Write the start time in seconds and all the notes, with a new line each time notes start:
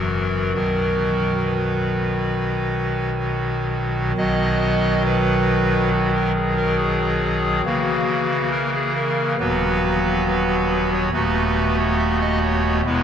Already playing: F#1 F#2 E3 F#3 F#4 A#4
0.54 B1 B2 D#3 F#3 F#4 A#4
1.46 B4
4.17 B1 B2 D#3 F#3 F#4 D#5
5.05 B4
5.93 F#4
6.15 A#4
6.35 G#4
6.57 A#4
6.77 G#4
7.66 C#3 E3 A#3 F#4
8.52 A#4
8.74 G#4
8.96 A#4
9.39 D#1 D#2 F#3 B3 F#4 B4
10.27 B4
10.93 C#5
11.13 D#1 D#2 A3 B3 F#4 B4
11.79 C#5
11.99 E5
12.21 D#5
12.42 C#5
12.86 E1 E2 G#3 B3 E4 B4